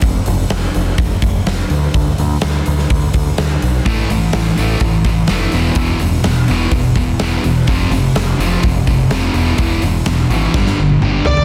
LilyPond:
<<
  \new Staff \with { instrumentName = "Lead electric guitar" } { \time 4/4 \key e \phrygian \tempo 4 = 126 r1 | r1 | r1 | r1 |
r1 | r2. r8 d''8 | }
  \new Staff \with { instrumentName = "Distorted electric guitar" } { \clef bass \time 4/4 \key e \phrygian r1 | r1 | <a, e a>8 <a, e>8 <a, e>8 <a, e a>8 <a, e>8 <a, e>8 <a, e a>8 <e, b, e>8 | <e, b, e>8 <e, b,>8 <e, b,>8 <e, b, e>8 <e, b,>8 <e, b,>8 <e, b, e>8 <e, b,>8 |
<f, c f>8 <f, c>8 <f, c>8 <f, c f>8 <f, c>8 <f, c>8 <f, c f>8 <e, b, e>8 | <e, b, e>8 <e, b,>8 <e, b,>8 <e, b, e>8 <g, d g>8 <g, d>8 <g, d g>8 <g, d>8 | }
  \new Staff \with { instrumentName = "Distorted electric guitar" } { \clef bass \time 4/4 \key e \phrygian r1 | r1 | <a, e a>8 <a, e>8 <a, e>8 <a, e a>8 <a, e>8 <a, e>8 <a, e a>8 <e, b, e>8 | <e, b, e>8 <e, b,>8 <e, b,>8 <e, b, e>8 <e, b,>8 <e, b,>8 <e, b, e>8 <e, b,>8 |
<f, c f>8 <f, c>8 <f, c>8 <f, c f>8 <f, c>8 <f, c>8 <f, c f>8 <e, b, e>8 | <e, b, e>8 <e, b,>8 <e, b,>8 <e, b, e>8 <g, d g>8 <g, d>8 <g, d g>8 <g, d>8 | }
  \new Staff \with { instrumentName = "Picked electric bass" } { \clef bass \time 4/4 \key e \phrygian f,,8 f,,8 f,,8 f,,8 f,,8 f,,8 f,,8 d,8 | d,8 d,8 d,8 d,8 d,8 d,8 d,8 b,,8 | a,,8 a,,8 a,,8 a,,8 a,,8 a,,8 f,,8 e,,8 | e,,8 e,,8 e,,8 e,,8 e,,8 e,,8 e,,8 e,,8 |
f,,8 f,,8 f,,8 f,,8 f,,8 f,,8 f,,8 e,,8 | e,,8 e,,8 e,,8 gis,,8 g,,8 g,,8 g,,8 b,,8 | }
  \new DrumStaff \with { instrumentName = "Drums" } \drummode { \time 4/4 <hho bd>8 hho8 <hho sn>8 hho8 <hho bd>8 <hho bd>8 <hho sn>8 hho8 | <hho bd>8 hho8 <hho sn>8 hho16 sn16 <hho bd>8 <hho bd>8 <hho sn>8 hho8 | <hho bd>8 hho8 <hho sn>8 hho8 <hho bd>8 <hho bd>8 <hho sn>8 <hho sn>8 | <hho bd>8 hho8 <hho sn>8 hho8 <hho bd>8 <hho bd>8 <hho sn>8 hho8 |
<hho bd>8 hho8 <hho sn>8 hho8 <hho bd>8 <hho bd>8 <hho sn>8 hho8 | <hho bd>8 hho8 <hho sn>8 hho8 <bd sn>16 sn8 tommh16 toml8 tomfh16 tomfh16 | }
>>